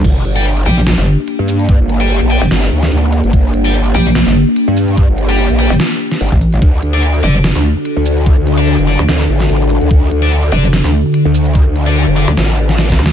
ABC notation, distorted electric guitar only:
X:1
M:4/4
L:1/16
Q:"Swing 16ths" 1/4=146
K:Gm
V:1 name="Distorted electric guitar"
z3 [Gdg] z2 [Gdg] z8 z | z3 [Gdg] z2 [Gdg] z8 z | z3 [Gdg] z2 [Gdg] z8 z | z3 [Gdg] z2 [Gdg] z8 z |
z3 [DAd] z2 [DAd] z8 z | z3 [DAd] z2 [DAd] z8 z | z3 [DAd] z2 [DAd] z8 z | z3 [DAd] z2 [DAd] z8 z |]